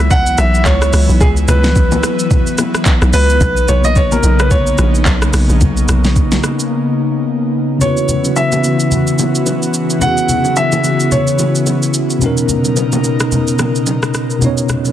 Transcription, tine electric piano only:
7.78 C#3 B3 C#4
7.83 E4 F#4 B4
9.99 C#3 B3 C#4
10.03 E4 F#4 G#4
12.19 B2 B3 C#4
12.24 D#4 A#4
14.39 B2 B3 C#4
14.44 D#4 C#5

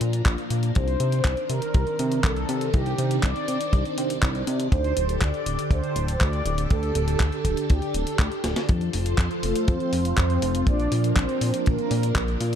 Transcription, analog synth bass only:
0.01 A#2
0.26 A#1
0.51 A#2
0.76 C2
1.00 C3
1.25 C2
1.50 C3
1.75 C2
1.99 C3
2.24 C2
2.49 C3
2.74 C2
2.98 C3
3.23 C2
3.48 C3
3.73 C2
3.98 C3
4.23 C2
4.47 C3
4.72 D2
4.97 D1
5.22 D2
5.46 D1
5.71 D2
5.96 D1
6.21 D2
6.46 D1
6.71 D2
6.95 D1
7.20 D2
7.45 D1
7.70 D2
7.94 D1
8.19 D2
8.44 D1
8.69 F2
8.94 F1
9.18 F2
9.43 F1
9.68 F2
9.93 F1
10.18 F2
10.42 F1
10.67 A#1
10.92 A#2
11.16 A#1
11.41 A#2
11.67 A#1
11.91 A#2
12.15 A#1
12.41 A#2

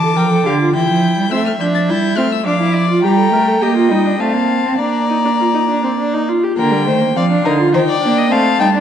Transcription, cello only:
Already playing: E3
0.17 F3
0.46 D3
0.74 E3
0.89 F3
1.17 G3
1.32 A3
1.60 F3
1.89 G3
2.18 A3
2.46 F3
3.04 G3
3.33 A3
3.62 A#3
3.91 G3
4.20 A3
4.35 A#3
4.65 C4
4.79 A#3
6.57 D3
6.87 D#3
7.16 F3
7.45 D3
7.74 D#3
8.03 A#3
8.32 A3
8.61 G3

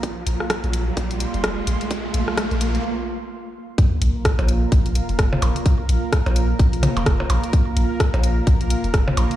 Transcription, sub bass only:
0.27 A#1
0.64 A#1
0.97 A#1
1.34 F1
1.67 A#1
2.14 A#1
2.51 A#1
4.02 A#1
4.39 A#1
4.72 A#1
5.09 F1
5.42 A#1
5.89 A#1
6.26 A#1
6.59 A#1
6.97 F1
7.30 A#1
7.77 A#1
8.14 A#1
8.47 A#1
8.84 F1
9.17 A#1

